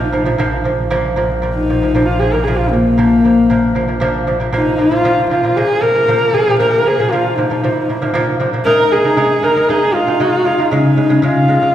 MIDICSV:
0, 0, Header, 1, 4, 480
1, 0, Start_track
1, 0, Tempo, 516796
1, 358, Time_signature, 4, 2, 24, 8
1, 10912, End_track
2, 0, Start_track
2, 0, Title_t, "Horsehead fiddle"
2, 0, Program_c, 0, 110
2, 0, Note_on_c, 0, 63, 80
2, 676, Note_off_c, 0, 63, 0
2, 1435, Note_on_c, 0, 63, 86
2, 1909, Note_on_c, 0, 65, 84
2, 1923, Note_off_c, 0, 63, 0
2, 2036, Note_on_c, 0, 68, 88
2, 2050, Note_off_c, 0, 65, 0
2, 2163, Note_on_c, 0, 70, 75
2, 2177, Note_off_c, 0, 68, 0
2, 2264, Note_on_c, 0, 68, 78
2, 2278, Note_off_c, 0, 70, 0
2, 2391, Note_on_c, 0, 65, 84
2, 2405, Note_off_c, 0, 68, 0
2, 2510, Note_on_c, 0, 58, 85
2, 2524, Note_off_c, 0, 65, 0
2, 3793, Note_off_c, 0, 58, 0
2, 4227, Note_on_c, 0, 63, 93
2, 4470, Note_on_c, 0, 65, 101
2, 4484, Note_off_c, 0, 63, 0
2, 4923, Note_off_c, 0, 65, 0
2, 4929, Note_on_c, 0, 65, 85
2, 5168, Note_on_c, 0, 68, 103
2, 5182, Note_off_c, 0, 65, 0
2, 5409, Note_on_c, 0, 70, 103
2, 5423, Note_off_c, 0, 68, 0
2, 5888, Note_on_c, 0, 68, 98
2, 5902, Note_off_c, 0, 70, 0
2, 6127, Note_off_c, 0, 68, 0
2, 6133, Note_on_c, 0, 70, 90
2, 6381, Note_on_c, 0, 68, 87
2, 6395, Note_off_c, 0, 70, 0
2, 6603, Note_on_c, 0, 65, 88
2, 6617, Note_off_c, 0, 68, 0
2, 6833, Note_on_c, 0, 63, 79
2, 6847, Note_off_c, 0, 65, 0
2, 7798, Note_off_c, 0, 63, 0
2, 8039, Note_on_c, 0, 70, 108
2, 8283, Note_on_c, 0, 68, 93
2, 8297, Note_off_c, 0, 70, 0
2, 8763, Note_on_c, 0, 70, 94
2, 8777, Note_off_c, 0, 68, 0
2, 8936, Note_off_c, 0, 70, 0
2, 8936, Note_on_c, 0, 70, 78
2, 8992, Note_on_c, 0, 68, 98
2, 9006, Note_off_c, 0, 70, 0
2, 9233, Note_on_c, 0, 65, 102
2, 9247, Note_off_c, 0, 68, 0
2, 9947, Note_on_c, 0, 63, 97
2, 9961, Note_off_c, 0, 65, 0
2, 10438, Note_on_c, 0, 65, 97
2, 10452, Note_off_c, 0, 63, 0
2, 10912, Note_off_c, 0, 65, 0
2, 10912, End_track
3, 0, Start_track
3, 0, Title_t, "Lute"
3, 0, Program_c, 1, 24
3, 115, Note_on_c, 1, 46, 75
3, 124, Note_on_c, 1, 53, 83
3, 212, Note_off_c, 1, 46, 0
3, 217, Note_off_c, 1, 53, 0
3, 236, Note_on_c, 1, 46, 77
3, 243, Note_on_c, 1, 53, 86
3, 333, Note_off_c, 1, 46, 0
3, 336, Note_off_c, 1, 53, 0
3, 356, Note_on_c, 1, 46, 98
3, 366, Note_on_c, 1, 53, 116
3, 550, Note_off_c, 1, 46, 0
3, 555, Note_off_c, 1, 53, 0
3, 595, Note_on_c, 1, 46, 68
3, 606, Note_on_c, 1, 53, 82
3, 790, Note_off_c, 1, 46, 0
3, 795, Note_off_c, 1, 53, 0
3, 840, Note_on_c, 1, 46, 102
3, 846, Note_on_c, 1, 53, 112
3, 1033, Note_off_c, 1, 46, 0
3, 1036, Note_off_c, 1, 53, 0
3, 1079, Note_on_c, 1, 46, 81
3, 1087, Note_on_c, 1, 53, 89
3, 1273, Note_off_c, 1, 46, 0
3, 1277, Note_off_c, 1, 53, 0
3, 1319, Note_on_c, 1, 46, 79
3, 1329, Note_on_c, 1, 53, 74
3, 1513, Note_off_c, 1, 46, 0
3, 1519, Note_off_c, 1, 53, 0
3, 1576, Note_on_c, 1, 46, 57
3, 1581, Note_on_c, 1, 53, 64
3, 1666, Note_off_c, 1, 46, 0
3, 1669, Note_off_c, 1, 53, 0
3, 1692, Note_on_c, 1, 46, 54
3, 1701, Note_on_c, 1, 53, 68
3, 1784, Note_off_c, 1, 46, 0
3, 1789, Note_off_c, 1, 53, 0
3, 1808, Note_on_c, 1, 46, 85
3, 1817, Note_on_c, 1, 53, 92
3, 1999, Note_off_c, 1, 46, 0
3, 2004, Note_off_c, 1, 53, 0
3, 2056, Note_on_c, 1, 46, 64
3, 2064, Note_on_c, 1, 53, 71
3, 2147, Note_off_c, 1, 46, 0
3, 2151, Note_off_c, 1, 53, 0
3, 2171, Note_on_c, 1, 46, 66
3, 2181, Note_on_c, 1, 53, 65
3, 2265, Note_off_c, 1, 46, 0
3, 2270, Note_off_c, 1, 53, 0
3, 2297, Note_on_c, 1, 46, 84
3, 2303, Note_on_c, 1, 53, 93
3, 2485, Note_off_c, 1, 46, 0
3, 2488, Note_off_c, 1, 53, 0
3, 2535, Note_on_c, 1, 46, 58
3, 2541, Note_on_c, 1, 53, 64
3, 2724, Note_off_c, 1, 46, 0
3, 2727, Note_off_c, 1, 53, 0
3, 2766, Note_on_c, 1, 46, 86
3, 2775, Note_on_c, 1, 53, 93
3, 2960, Note_off_c, 1, 46, 0
3, 2964, Note_off_c, 1, 53, 0
3, 3012, Note_on_c, 1, 46, 64
3, 3020, Note_on_c, 1, 53, 61
3, 3203, Note_off_c, 1, 46, 0
3, 3208, Note_off_c, 1, 53, 0
3, 3249, Note_on_c, 1, 46, 89
3, 3259, Note_on_c, 1, 53, 90
3, 3442, Note_off_c, 1, 46, 0
3, 3447, Note_off_c, 1, 53, 0
3, 3483, Note_on_c, 1, 46, 69
3, 3491, Note_on_c, 1, 53, 75
3, 3583, Note_off_c, 1, 46, 0
3, 3587, Note_off_c, 1, 53, 0
3, 3602, Note_on_c, 1, 46, 57
3, 3610, Note_on_c, 1, 53, 61
3, 3703, Note_off_c, 1, 46, 0
3, 3707, Note_off_c, 1, 53, 0
3, 3716, Note_on_c, 1, 46, 97
3, 3728, Note_on_c, 1, 53, 112
3, 3916, Note_off_c, 1, 46, 0
3, 3922, Note_off_c, 1, 53, 0
3, 3965, Note_on_c, 1, 46, 72
3, 3971, Note_on_c, 1, 53, 81
3, 4064, Note_off_c, 1, 46, 0
3, 4068, Note_off_c, 1, 53, 0
3, 4087, Note_on_c, 1, 46, 76
3, 4096, Note_on_c, 1, 53, 69
3, 4186, Note_off_c, 1, 46, 0
3, 4190, Note_off_c, 1, 53, 0
3, 4203, Note_on_c, 1, 46, 95
3, 4213, Note_on_c, 1, 53, 105
3, 4400, Note_off_c, 1, 46, 0
3, 4405, Note_off_c, 1, 53, 0
3, 4442, Note_on_c, 1, 46, 70
3, 4450, Note_on_c, 1, 53, 70
3, 4544, Note_off_c, 1, 46, 0
3, 4547, Note_off_c, 1, 53, 0
3, 4561, Note_on_c, 1, 46, 79
3, 4567, Note_on_c, 1, 53, 86
3, 4663, Note_off_c, 1, 46, 0
3, 4666, Note_off_c, 1, 53, 0
3, 4682, Note_on_c, 1, 46, 93
3, 4691, Note_on_c, 1, 53, 107
3, 4879, Note_off_c, 1, 46, 0
3, 4884, Note_off_c, 1, 53, 0
3, 4923, Note_on_c, 1, 46, 65
3, 4934, Note_on_c, 1, 53, 80
3, 5024, Note_off_c, 1, 46, 0
3, 5029, Note_off_c, 1, 53, 0
3, 5049, Note_on_c, 1, 46, 71
3, 5058, Note_on_c, 1, 53, 68
3, 5147, Note_off_c, 1, 46, 0
3, 5151, Note_off_c, 1, 53, 0
3, 5172, Note_on_c, 1, 46, 81
3, 5178, Note_on_c, 1, 53, 91
3, 5364, Note_off_c, 1, 46, 0
3, 5367, Note_off_c, 1, 53, 0
3, 5407, Note_on_c, 1, 46, 69
3, 5417, Note_on_c, 1, 53, 65
3, 5505, Note_off_c, 1, 46, 0
3, 5510, Note_off_c, 1, 53, 0
3, 5525, Note_on_c, 1, 46, 56
3, 5531, Note_on_c, 1, 53, 66
3, 5625, Note_off_c, 1, 46, 0
3, 5628, Note_off_c, 1, 53, 0
3, 5649, Note_on_c, 1, 46, 90
3, 5656, Note_on_c, 1, 53, 93
3, 5842, Note_off_c, 1, 46, 0
3, 5846, Note_off_c, 1, 53, 0
3, 5884, Note_on_c, 1, 46, 66
3, 5894, Note_on_c, 1, 53, 65
3, 5984, Note_off_c, 1, 46, 0
3, 5988, Note_off_c, 1, 53, 0
3, 6015, Note_on_c, 1, 46, 72
3, 6019, Note_on_c, 1, 53, 78
3, 6109, Note_off_c, 1, 46, 0
3, 6111, Note_off_c, 1, 53, 0
3, 6127, Note_on_c, 1, 46, 92
3, 6135, Note_on_c, 1, 53, 104
3, 6321, Note_off_c, 1, 46, 0
3, 6325, Note_off_c, 1, 53, 0
3, 6368, Note_on_c, 1, 46, 68
3, 6380, Note_on_c, 1, 53, 68
3, 6465, Note_off_c, 1, 46, 0
3, 6471, Note_off_c, 1, 53, 0
3, 6493, Note_on_c, 1, 46, 74
3, 6500, Note_on_c, 1, 53, 77
3, 6588, Note_off_c, 1, 46, 0
3, 6591, Note_off_c, 1, 53, 0
3, 6615, Note_on_c, 1, 46, 86
3, 6621, Note_on_c, 1, 53, 97
3, 6804, Note_off_c, 1, 46, 0
3, 6807, Note_off_c, 1, 53, 0
3, 6850, Note_on_c, 1, 46, 72
3, 6858, Note_on_c, 1, 53, 80
3, 6946, Note_off_c, 1, 46, 0
3, 6950, Note_off_c, 1, 53, 0
3, 6965, Note_on_c, 1, 46, 63
3, 6976, Note_on_c, 1, 53, 79
3, 7063, Note_off_c, 1, 46, 0
3, 7068, Note_off_c, 1, 53, 0
3, 7091, Note_on_c, 1, 46, 82
3, 7096, Note_on_c, 1, 53, 92
3, 7282, Note_off_c, 1, 46, 0
3, 7284, Note_off_c, 1, 53, 0
3, 7330, Note_on_c, 1, 46, 72
3, 7339, Note_on_c, 1, 53, 72
3, 7425, Note_off_c, 1, 46, 0
3, 7429, Note_off_c, 1, 53, 0
3, 7446, Note_on_c, 1, 46, 76
3, 7452, Note_on_c, 1, 53, 86
3, 7543, Note_off_c, 1, 46, 0
3, 7546, Note_off_c, 1, 53, 0
3, 7557, Note_on_c, 1, 46, 110
3, 7570, Note_on_c, 1, 53, 127
3, 7753, Note_off_c, 1, 46, 0
3, 7760, Note_off_c, 1, 53, 0
3, 7799, Note_on_c, 1, 46, 86
3, 7807, Note_on_c, 1, 53, 83
3, 7899, Note_off_c, 1, 46, 0
3, 7902, Note_off_c, 1, 53, 0
3, 7924, Note_on_c, 1, 46, 66
3, 7931, Note_on_c, 1, 53, 82
3, 8021, Note_off_c, 1, 46, 0
3, 8023, Note_off_c, 1, 53, 0
3, 8038, Note_on_c, 1, 56, 93
3, 8048, Note_on_c, 1, 63, 101
3, 8233, Note_off_c, 1, 56, 0
3, 8238, Note_off_c, 1, 63, 0
3, 8281, Note_on_c, 1, 56, 64
3, 8293, Note_on_c, 1, 63, 74
3, 8378, Note_off_c, 1, 56, 0
3, 8384, Note_off_c, 1, 63, 0
3, 8400, Note_on_c, 1, 56, 65
3, 8407, Note_on_c, 1, 63, 80
3, 8498, Note_off_c, 1, 56, 0
3, 8502, Note_off_c, 1, 63, 0
3, 8515, Note_on_c, 1, 56, 92
3, 8523, Note_on_c, 1, 63, 105
3, 8711, Note_off_c, 1, 56, 0
3, 8715, Note_off_c, 1, 63, 0
3, 8756, Note_on_c, 1, 56, 72
3, 8766, Note_on_c, 1, 63, 78
3, 8855, Note_off_c, 1, 56, 0
3, 8860, Note_off_c, 1, 63, 0
3, 8878, Note_on_c, 1, 56, 62
3, 8889, Note_on_c, 1, 63, 72
3, 8976, Note_off_c, 1, 56, 0
3, 8981, Note_off_c, 1, 63, 0
3, 9000, Note_on_c, 1, 56, 80
3, 9010, Note_on_c, 1, 63, 98
3, 9192, Note_off_c, 1, 56, 0
3, 9197, Note_off_c, 1, 63, 0
3, 9240, Note_on_c, 1, 56, 69
3, 9251, Note_on_c, 1, 63, 69
3, 9336, Note_off_c, 1, 56, 0
3, 9341, Note_off_c, 1, 63, 0
3, 9356, Note_on_c, 1, 56, 67
3, 9365, Note_on_c, 1, 63, 74
3, 9454, Note_off_c, 1, 56, 0
3, 9458, Note_off_c, 1, 63, 0
3, 9473, Note_on_c, 1, 56, 93
3, 9481, Note_on_c, 1, 63, 98
3, 9667, Note_off_c, 1, 56, 0
3, 9671, Note_off_c, 1, 63, 0
3, 9708, Note_on_c, 1, 56, 71
3, 9718, Note_on_c, 1, 63, 78
3, 9809, Note_off_c, 1, 56, 0
3, 9814, Note_off_c, 1, 63, 0
3, 9829, Note_on_c, 1, 56, 66
3, 9841, Note_on_c, 1, 63, 74
3, 9929, Note_off_c, 1, 56, 0
3, 9935, Note_off_c, 1, 63, 0
3, 9951, Note_on_c, 1, 49, 92
3, 9960, Note_on_c, 1, 56, 102
3, 10145, Note_off_c, 1, 49, 0
3, 10150, Note_off_c, 1, 56, 0
3, 10187, Note_on_c, 1, 49, 66
3, 10196, Note_on_c, 1, 56, 74
3, 10287, Note_off_c, 1, 49, 0
3, 10292, Note_off_c, 1, 56, 0
3, 10304, Note_on_c, 1, 49, 75
3, 10310, Note_on_c, 1, 56, 88
3, 10405, Note_off_c, 1, 49, 0
3, 10408, Note_off_c, 1, 56, 0
3, 10423, Note_on_c, 1, 49, 92
3, 10432, Note_on_c, 1, 56, 100
3, 10620, Note_off_c, 1, 49, 0
3, 10624, Note_off_c, 1, 56, 0
3, 10663, Note_on_c, 1, 49, 71
3, 10675, Note_on_c, 1, 56, 80
3, 10764, Note_off_c, 1, 49, 0
3, 10770, Note_off_c, 1, 56, 0
3, 10787, Note_on_c, 1, 49, 57
3, 10797, Note_on_c, 1, 56, 70
3, 10885, Note_off_c, 1, 49, 0
3, 10890, Note_off_c, 1, 56, 0
3, 10912, End_track
4, 0, Start_track
4, 0, Title_t, "Double bass"
4, 0, Program_c, 2, 43
4, 0, Note_on_c, 2, 34, 67
4, 357, Note_off_c, 2, 34, 0
4, 362, Note_on_c, 2, 34, 73
4, 4263, Note_off_c, 2, 34, 0
4, 10912, End_track
0, 0, End_of_file